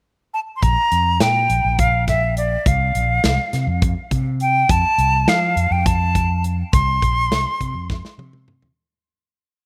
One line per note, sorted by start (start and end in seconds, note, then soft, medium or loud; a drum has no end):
0.34 0.40 A5 medium
0.56 0.64 C6 medium
0.62 0.76 A#1 medium
0.62 1.23 A#5 loud
0.62 kick medium
0.62 closed hi-hat medium
0.92 1.18 F2 medium
0.92 closed hi-hat medium
1.20 1.47 A#2 medium
1.20 1.81 G5 medium
1.20 snare loud
1.20 closed hi-hat medium
1.50 1.63 A#1 medium
1.50 closed hi-hat medium
1.65 2.56 A#1 medium
1.79 2.08 F5 loud
1.79 kick loud
1.79 closed hi-hat medium
2.08 2.35 E5 medium
2.08 kick medium
2.08 snare soft
2.08 closed hi-hat medium
2.37 2.69 D5 medium
2.37 closed hi-hat medium
2.66 2.92 C2 loud
2.66 3.83 F5 medium
2.66 kick medium
2.66 closed hi-hat medium
2.95 3.21 A#1 medium
2.95 closed hi-hat medium
3.24 3.37 C2 medium
3.24 snare medium
3.24 closed hi-hat medium
3.53 3.66 C3 medium
3.53 snare soft
3.53 closed hi-hat medium
3.67 3.93 F2 medium
3.82 kick loud
3.82 closed hi-hat medium
4.11 4.63 C3 medium
4.11 kick medium
4.11 closed hi-hat medium
4.40 4.72 G5 medium
4.40 closed hi-hat soft
4.69 4.82 F2 medium
4.69 5.30 A5 loud
4.69 kick medium
4.69 closed hi-hat medium
4.98 5.24 C2 medium
4.98 closed hi-hat medium
5.27 5.53 F3 medium
5.27 5.74 F5 medium
5.27 snare loud
5.27 closed hi-hat medium
5.56 5.69 F2 medium
5.56 closed hi-hat medium
5.71 6.62 F2 medium
5.71 5.88 G5 medium
5.86 6.44 A5 medium
5.86 kick medium
5.86 closed hi-hat medium
6.15 kick medium
6.15 closed hi-hat medium
6.44 closed hi-hat medium
6.73 6.99 C2 loud
6.73 8.14 C6 loud
6.73 kick loud
6.73 closed hi-hat medium
7.02 7.28 A#1 medium
7.02 kick medium
7.02 closed hi-hat medium
7.31 7.44 C2 loud
7.31 snare loud
7.31 closed hi-hat medium
7.61 7.73 C3 medium
7.61 kick medium
7.61 closed hi-hat medium
7.75 8.01 F2 medium
7.90 kick loud
7.90 snare medium
8.05 snare medium
8.18 8.70 C3 medium
8.18 high tom medium
8.33 mid tom medium
8.48 mid tom medium
8.62 floor tom medium